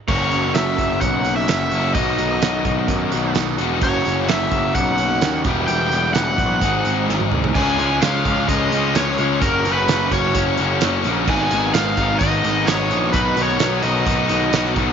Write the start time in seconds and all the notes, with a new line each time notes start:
0.08 F#1 F#2 C#3 F#3 A#3 C#4 F#4 C#5, kick, crash
0.32 F#1, closed hi-hat
0.55 F#1 E5, snare, closed hi-hat, tambourine
0.78 F#1, kick, closed hi-hat
1.01 B1 F#5, kick, closed hi-hat
1.25 F#2 C#3 F#3 A#3 C#4 F#4, closed hi-hat
1.36 E5
1.48 F#1 F#2 C#3 F#3 A#3 C#4 F#4 E5, snare, closed hi-hat, tambourine
1.72 F#1 A#3 C#4 F#4, closed hi-hat
1.94 B1 B2 D#3 F#3 B3 D#4 F#4 D#5, kick, closed hi-hat
2.18 B1, closed hi-hat
2.42 B1, snare, closed hi-hat, tambourine
2.65 B1, kick, closed hi-hat
2.88 F#2, kick, closed hi-hat
3.10 B1 B2 F#3 B3 D#4 F#4, closed hi-hat
3.33 B1 B2 F#3 B3 D#4 F#4, snare, closed hi-hat, tambourine
3.58 E1 D#3 B3 D#4 F#4, closed hi-hat
3.79 F#1 F#2 C#3 F#3 A#3 C#4 F#4, kick, closed hi-hat
3.84 C#5
4.05 F#1, closed hi-hat
4.28 F#1 E5, snare, closed hi-hat, tambourine
4.52 F#1, kick, closed hi-hat
4.75 B1 F#5, kick, closed hi-hat
4.98 F#2 C#3 F#3 A#3 C#4 F#4, closed hi-hat
5.21 D#2 F#2 C#3 F#3 A#3 C#4 F#4, snare, closed hi-hat, tambourine
5.44 E1 E2 B2 E3 G3 B3 E4 G4, kick, closed hi-hat
5.67 E1 G5, closed hi-hat
5.92 E1, closed hi-hat
6.14 E1 F#5, snare, closed hi-hat, tambourine
6.38 A#1, kick, closed hi-hat
6.61 G#1 G#2 D#3 G#3 C4 D#4 G#4, kick, closed hi-hat
6.85 G#1, closed hi-hat
7.08 G#1, snare
7.20 high tom
7.32 C2, mid tom
7.44 floor tom
7.55 C#2 C#3 F3 G#3 C#4 F4 G#5, kick, crash
7.78 C#2 C#3 F3 G#3 C#4 F4, closed hi-hat
8.02 C#2 C#3 F3 G#3 C#4 F4 F5, snare, closed hi-hat, tambourine
8.25 C#2 C#3 F3 G#3 C#4 F4, kick, closed hi-hat
8.48 C#2 C#3 F3 G#3 C#4 F4 D#5, kick, closed hi-hat
8.72 C#2 C#3 F3 G#3 C#4 F4, closed hi-hat
8.95 C#2 C#3 F3 G#3 C#4 F4 C#5, snare, closed hi-hat, tambourine
9.18 C#2 C#3 F3 G#3 C#4 F4, closed hi-hat
9.42 F#1 F#2 C#3 F#3 A#3 C#4 F#4 A#4, kick, closed hi-hat
9.65 F#1 F#2 C#3 F#3 A#3 C#4 F#4, closed hi-hat
9.73 B4
9.88 F#1 F#2 C#3 F#3 A#3 C#4 F#4, snare, closed hi-hat, tambourine
10.11 F#1 F#2 C#3 F#3 A#3 C#4 F#4 C#5, kick, closed hi-hat
10.35 F#1 F#2 C#3 F#3 A#3 C#4, kick, closed hi-hat
10.39 F#4
10.58 F#1 F#2 C#3 F#3 A#3 C#4, closed hi-hat
10.62 F#4
10.81 F#1 F#2 C#3 F#3 A#3 C#4, snare, closed hi-hat, tambourine
10.85 F#4
11.04 A#1 F#2 C#3 F#3 A#3 C#4 F#4, closed hi-hat
11.28 G#1 G#2 D#3 G#3 B3 D#4 G#4 G#5, kick, crash
11.51 G#1 G#2 D#3 G#3 B3 D#4 G#4, closed hi-hat
11.74 G#1 G#2 D#3 G#3 B3 D#4 G#4 F5, snare, closed hi-hat, tambourine
11.97 G#1 G#2 D#3 G#3 B3 D#4 G#4, kick, closed hi-hat
12.19 G#1 G#2 D#3 G#3 B3 D#4 D#5, kick, closed hi-hat
12.23 G#4
12.44 G#1 G#2 D#3 G#3 B3 D#4 G#4, closed hi-hat
12.67 G#1 G#2 D#3 G#3 B3 D#4 G#4 C#5, snare, closed hi-hat, tambourine
12.90 A#1 G#2 D#3 G#3 B3 D#4 G#4, closed hi-hat
13.12 B1 B2 D#3 F#3 B3 D#4 F#4 B4, kick, closed hi-hat
13.17 B4
13.36 B1 B2 D#3 F#3 B3 D#4 F#4 B4, closed hi-hat
13.43 C#5
13.59 B1 B2 D#3 F#3 B3 D#4 F#4 B4, snare, closed hi-hat, tambourine
13.83 B1 B2 D#3 F#3 B3 D#4 F#4 B4 D#5, closed hi-hat
14.06 B1 B2 D#3 F#3 B3 D#4 F#4 B4, kick, closed hi-hat
14.29 B1 B2 D#3 F#3 B3 D#4 F#4 B4, closed hi-hat
14.53 B1 B2 D#3 F#3 B3 D#4 F#4 B4, snare, closed hi-hat, tambourine
14.66 snare
14.76 B1 B2 D#3 F#3 B3 D#4 F#4 B4, kick, closed hi-hat